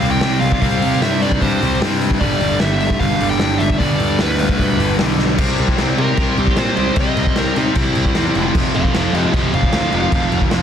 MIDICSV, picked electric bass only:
0, 0, Header, 1, 2, 480
1, 0, Start_track
1, 0, Tempo, 396040
1, 745, Time_signature, 4, 2, 24, 8
1, 12874, End_track
2, 0, Start_track
2, 0, Title_t, "Picked electric bass"
2, 0, Program_c, 0, 34
2, 23, Note_on_c, 0, 36, 88
2, 256, Note_off_c, 0, 36, 0
2, 273, Note_on_c, 0, 36, 94
2, 497, Note_off_c, 0, 36, 0
2, 505, Note_on_c, 0, 36, 89
2, 738, Note_off_c, 0, 36, 0
2, 748, Note_on_c, 0, 36, 90
2, 981, Note_off_c, 0, 36, 0
2, 995, Note_on_c, 0, 48, 92
2, 1225, Note_off_c, 0, 48, 0
2, 1240, Note_on_c, 0, 43, 80
2, 1702, Note_off_c, 0, 43, 0
2, 1718, Note_on_c, 0, 43, 88
2, 1948, Note_off_c, 0, 43, 0
2, 1960, Note_on_c, 0, 36, 82
2, 2190, Note_off_c, 0, 36, 0
2, 2199, Note_on_c, 0, 43, 84
2, 2663, Note_off_c, 0, 43, 0
2, 2677, Note_on_c, 0, 31, 103
2, 2910, Note_off_c, 0, 31, 0
2, 2926, Note_on_c, 0, 31, 89
2, 3155, Note_off_c, 0, 31, 0
2, 3167, Note_on_c, 0, 31, 78
2, 3629, Note_off_c, 0, 31, 0
2, 3638, Note_on_c, 0, 31, 90
2, 3872, Note_off_c, 0, 31, 0
2, 3883, Note_on_c, 0, 31, 95
2, 4115, Note_off_c, 0, 31, 0
2, 4133, Note_on_c, 0, 31, 98
2, 4360, Note_off_c, 0, 31, 0
2, 4368, Note_on_c, 0, 31, 95
2, 4598, Note_off_c, 0, 31, 0
2, 4607, Note_on_c, 0, 31, 86
2, 4837, Note_off_c, 0, 31, 0
2, 4852, Note_on_c, 0, 43, 84
2, 5080, Note_off_c, 0, 43, 0
2, 5092, Note_on_c, 0, 38, 86
2, 5553, Note_off_c, 0, 38, 0
2, 5567, Note_on_c, 0, 38, 86
2, 5798, Note_off_c, 0, 38, 0
2, 5816, Note_on_c, 0, 31, 94
2, 6042, Note_off_c, 0, 31, 0
2, 6058, Note_on_c, 0, 35, 95
2, 6516, Note_off_c, 0, 35, 0
2, 6529, Note_on_c, 0, 36, 102
2, 6679, Note_off_c, 0, 36, 0
2, 6769, Note_on_c, 0, 36, 95
2, 6919, Note_off_c, 0, 36, 0
2, 7011, Note_on_c, 0, 36, 77
2, 7160, Note_off_c, 0, 36, 0
2, 7252, Note_on_c, 0, 48, 96
2, 7401, Note_off_c, 0, 48, 0
2, 7490, Note_on_c, 0, 36, 93
2, 7640, Note_off_c, 0, 36, 0
2, 7732, Note_on_c, 0, 36, 95
2, 7881, Note_off_c, 0, 36, 0
2, 7971, Note_on_c, 0, 46, 95
2, 8120, Note_off_c, 0, 46, 0
2, 8209, Note_on_c, 0, 36, 95
2, 8359, Note_off_c, 0, 36, 0
2, 8446, Note_on_c, 0, 36, 85
2, 8596, Note_off_c, 0, 36, 0
2, 8693, Note_on_c, 0, 36, 86
2, 8841, Note_off_c, 0, 36, 0
2, 8933, Note_on_c, 0, 36, 81
2, 9081, Note_off_c, 0, 36, 0
2, 9169, Note_on_c, 0, 48, 87
2, 9318, Note_off_c, 0, 48, 0
2, 9406, Note_on_c, 0, 36, 85
2, 9556, Note_off_c, 0, 36, 0
2, 9657, Note_on_c, 0, 36, 94
2, 9803, Note_off_c, 0, 36, 0
2, 9891, Note_on_c, 0, 40, 98
2, 10039, Note_off_c, 0, 40, 0
2, 10127, Note_on_c, 0, 29, 101
2, 10276, Note_off_c, 0, 29, 0
2, 10364, Note_on_c, 0, 29, 99
2, 10513, Note_off_c, 0, 29, 0
2, 10603, Note_on_c, 0, 29, 93
2, 10752, Note_off_c, 0, 29, 0
2, 10833, Note_on_c, 0, 29, 79
2, 10985, Note_off_c, 0, 29, 0
2, 11067, Note_on_c, 0, 41, 79
2, 11220, Note_off_c, 0, 41, 0
2, 11315, Note_on_c, 0, 29, 83
2, 11465, Note_off_c, 0, 29, 0
2, 11551, Note_on_c, 0, 29, 87
2, 11702, Note_off_c, 0, 29, 0
2, 11795, Note_on_c, 0, 38, 97
2, 11944, Note_off_c, 0, 38, 0
2, 12030, Note_on_c, 0, 29, 98
2, 12181, Note_off_c, 0, 29, 0
2, 12265, Note_on_c, 0, 29, 95
2, 12417, Note_off_c, 0, 29, 0
2, 12505, Note_on_c, 0, 29, 86
2, 12656, Note_off_c, 0, 29, 0
2, 12741, Note_on_c, 0, 29, 88
2, 12874, Note_off_c, 0, 29, 0
2, 12874, End_track
0, 0, End_of_file